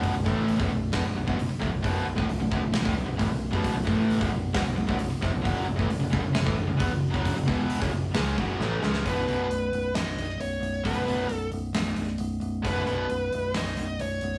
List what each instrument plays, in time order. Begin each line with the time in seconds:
Already playing: picked electric bass B0, distorted electric guitar B1 F#2 B2
0.03 kick, open hi-hat
0.13 picked electric bass B0, distorted electric guitar B1 F#2
0.24 picked electric bass A1, distorted electric guitar A2 E3 A3, kick
0.48 open hi-hat
0.60 picked electric bass B0, distorted electric guitar B1 F#2, kick
0.70 picked electric bass B0, distorted electric guitar B1 F#2
0.92 picked electric bass E1, distorted electric guitar E2 B2, kick, snare, open hi-hat
1.04 picked electric bass B0, distorted electric guitar B1 F#2
1.15 picked electric bass B0, distorted electric guitar B1 F#2
1.26 picked electric bass B0, distorted electric guitar B1 F#2, kick
1.38 picked electric bass B0, distorted electric guitar B1 F#2, open hi-hat
1.49 muted distorted electric guitar stroke, muted picked electric bass stroke
1.60 picked electric bass F1, distorted electric guitar F2 C3, kick
1.71 picked electric bass B0, distorted electric guitar B1 F#2
1.82 picked electric bass B0, distorted electric guitar B1 F#2 B2, kick, open hi-hat
2.06 picked electric bass B0, distorted electric guitar B1 F#2
2.15 picked electric bass D1, distorted electric guitar D2 A2, kick
2.27 picked electric bass B0, distorted electric guitar B1 F#2, open hi-hat
2.40 picked electric bass B0, distorted electric guitar B1 F#2
2.51 picked electric bass B0, distorted electric guitar B1 F#2, kick
2.63 picked electric bass B0, distorted electric guitar B1 F#2
2.74 picked electric bass B0, distorted electric guitar B1 F#2, snare, open hi-hat
2.85 picked electric bass D1, distorted electric guitar D2 A2, kick
2.96 picked electric bass B0, distorted electric guitar B1 F#2
3.07 picked electric bass B0, distorted electric guitar B1 F#2
3.19 picked electric bass A1, distorted electric guitar A2 E3, kick, open hi-hat
3.30 picked electric bass B0, distorted electric guitar B1 F#2
3.53 picked electric bass B0, distorted electric guitar B1 F#2 B2, kick
3.64 kick, open hi-hat
3.75 picked electric bass B0, distorted electric guitar B1 F#2
3.86 picked electric bass A1, distorted electric guitar A2 E3 A3, kick
4.10 open hi-hat
4.20 picked electric bass B0, distorted electric guitar B1 F#2, kick
4.31 picked electric bass B0, distorted electric guitar B1 F#2
4.54 picked electric bass E1, distorted electric guitar E2 B2, kick, snare, open hi-hat
4.65 picked electric bass B0, distorted electric guitar B1 F#2
4.76 picked electric bass B0, distorted electric guitar B1 F#2
4.88 picked electric bass B0, distorted electric guitar B1 F#2, kick
4.99 picked electric bass B0, distorted electric guitar B1 F#2, open hi-hat
5.11 muted distorted electric guitar stroke, muted picked electric bass stroke
5.22 picked electric bass F1, distorted electric guitar F2 C3, kick, snare
5.32 picked electric bass B0, distorted electric guitar B1 F#2
5.44 picked electric bass F#1, distorted electric guitar F#2 C#3 F#3, kick, open hi-hat
5.67 picked electric bass F#1, distorted electric guitar F#2 C#3
5.79 picked electric bass A1, distorted electric guitar A2 E3, kick
5.90 picked electric bass F#1, distorted electric guitar F#2 C#3, open hi-hat
6.03 picked electric bass F#1, distorted electric guitar F#2 C#3
6.13 picked electric bass F#1, distorted electric guitar F#2 C#3, kick
6.24 picked electric bass F#1, distorted electric guitar F#2 C#3
6.33 picked electric bass F#1, distorted electric guitar F#2, snare, open hi-hat
6.37 distorted electric guitar F#2 C#3
6.46 picked electric bass A1, distorted electric guitar A2 E3, kick
6.58 picked electric bass F#1, distorted electric guitar F#2 C#3
6.69 picked electric bass F#1, distorted electric guitar F#2 C#3
6.80 picked electric bass E2, distorted electric guitar E3 B3, kick, open hi-hat
6.91 picked electric bass F#1, distorted electric guitar F#2 C#3
7.10 picked electric bass F#1, distorted electric guitar F#2 F#3, kick
7.14 distorted electric guitar F#2 C#3 F#3
7.25 kick, open hi-hat
7.36 picked electric bass F#1, distorted electric guitar F#2 C#3
7.47 picked electric bass E1, distorted electric guitar E2 B2 E3, kick
7.70 open hi-hat
7.81 picked electric bass F#1, distorted electric guitar F#2 C#3, kick
7.92 picked electric bass F#1, distorted electric guitar F#2 C#3
8.15 picked electric bass C#2, distorted electric guitar C#3 G#3 C#4, snare, open hi-hat
8.38 picked electric bass F#1, distorted electric guitar F#2 C#3 F#3, kick
8.60 picked electric bass A1, distorted electric guitar A2 E3 A3, snare
8.82 picked electric bass C#2, distorted electric guitar C#3 G#3 C#4, snare
8.94 snare
9.06 picked electric bass B0, distorted electric guitar B1 F#2 B2, lead electric guitar B4, kick, open hi-hat
9.27 picked electric bass B0, distorted electric guitar B1 F#2 B2, open hi-hat
9.50 picked electric bass B0, open hi-hat
9.72 picked electric bass B0, open hi-hat
9.94 picked electric bass B0, lead electric guitar D#5, snare, open hi-hat
10.17 picked electric bass B0, open hi-hat
10.29 snare
10.38 picked electric bass B0, lead electric guitar C#5, open hi-hat
10.60 picked electric bass B0, open hi-hat
10.84 picked electric bass B0, distorted electric guitar B1 F#2 B2, lead electric guitar B4, kick, open hi-hat
11.06 picked electric bass B0, distorted electric guitar B1 F#2 B2, open hi-hat
11.29 picked electric bass B0, open hi-hat
11.33 lead electric guitar A4
11.52 picked electric bass B0, open hi-hat
11.73 picked electric bass B0, snare, open hi-hat
11.96 picked electric bass B0, open hi-hat
12.07 snare
12.18 picked electric bass B0, open hi-hat
12.40 picked electric bass B0, open hi-hat
12.63 picked electric bass B0, distorted electric guitar B1 F#2 B2, lead electric guitar B4, kick, open hi-hat
12.86 picked electric bass B0, distorted electric guitar B1 F#2 B2, open hi-hat
13.09 picked electric bass B0, open hi-hat
13.32 picked electric bass B0, open hi-hat
13.54 picked electric bass B0, lead electric guitar D#5, snare, open hi-hat
13.77 picked electric bass B0, open hi-hat
13.99 picked electric bass B0, lead electric guitar C#5, open hi-hat
14.21 picked electric bass B0, open hi-hat